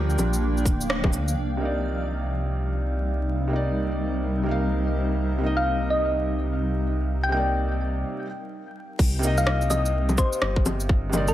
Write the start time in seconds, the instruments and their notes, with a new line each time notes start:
Already playing: detuned saw bass D2, ambient pad F3 A#3 D4 F5 G5, felt piano G3 F4 A#4
0.10 shaker
0.18 detuned saw bass A#1, low bongo, cabasa, shaker
0.33 shaker
0.57 shaker
0.65 detuned saw bass D1, kick, cabasa
0.81 shaker
0.90 cross-stick
1.04 kick, low bongo
1.12 detuned saw bass D2, cabasa
1.28 shaker
1.36 detuned saw bass C2, ambient pad G3
1.42 ambient pad C4
1.57 felt piano C3 A#3
1.62 felt piano D#4 D5, ambient pad D#4
2.00 ambient pad A#4
3.48 felt piano C3 A#3
3.53 felt piano D#4 D5
4.43 felt piano C3 A#3
4.49 felt piano D#4 F5
5.38 felt piano C3 A#3
5.44 felt piano D#4 D#5
5.57 synth pluck F5
5.90 synth pluck D#5
7.24 synth pluck G5
7.29 felt piano C3 A#3, synth pluck G5
7.34 felt piano D#4 D5
8.99 detuned saw bass C2, kick, crash
9.19 felt piano C3 A#3
9.23 felt piano D#4 D#5, cabasa
9.38 synth pluck F5, shaker
9.47 cross-stick
9.61 shaker
9.70 synth pluck D#5, low bongo, cabasa, shaker
9.86 shaker
10.09 low bongo, shaker
10.18 synth pluck C5, kick, cabasa
10.33 shaker
10.42 detuned saw bass G1, cross-stick
10.56 kick
10.66 low bongo, cabasa
10.80 shaker
10.89 kick
11.09 felt piano C3 A#3, low bongo, cabasa
11.15 felt piano D#4 D5
11.28 synth pluck A#4, shaker